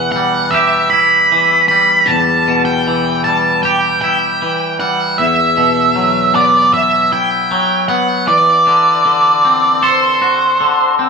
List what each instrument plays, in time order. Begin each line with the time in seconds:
Already playing: clean electric guitar E2 B2 E3, lead electric guitar F#5
0.12 lead electric guitar F#5
0.16 clean electric guitar G3
0.51 clean electric guitar G4, lead electric guitar E5
0.90 clean electric guitar E4, lead electric guitar B5
1.32 clean electric guitar E3
1.68 clean electric guitar G3, lead electric guitar B5
2.07 clean electric guitar E2, lead electric guitar A5
2.48 clean electric guitar B2
2.65 lead electric guitar G5
2.87 clean electric guitar E3
3.24 clean electric guitar G3, lead electric guitar A5
3.63 clean electric guitar G4, lead electric guitar G5
4.02 clean electric guitar E4, lead electric guitar G5
4.42 clean electric guitar E3
4.80 clean electric guitar G3, lead electric guitar F#5
5.18 clean electric guitar E2, lead electric guitar E5
5.57 clean electric guitar B2
5.96 clean electric guitar F#3
6.34 clean electric guitar B3, lead electric guitar D5
6.74 lead electric guitar E5
7.12 clean electric guitar E4, lead electric guitar G5
7.51 clean electric guitar F#3
7.88 clean electric guitar B3, lead electric guitar F#5
8.27 clean electric guitar E3, lead electric guitar D5
8.67 clean electric guitar D3
9.05 clean electric guitar D3
9.45 clean electric guitar C4
9.83 clean electric guitar A4, lead electric guitar C5
10.22 clean electric guitar F#4
10.61 clean electric guitar D3
10.99 clean electric guitar C4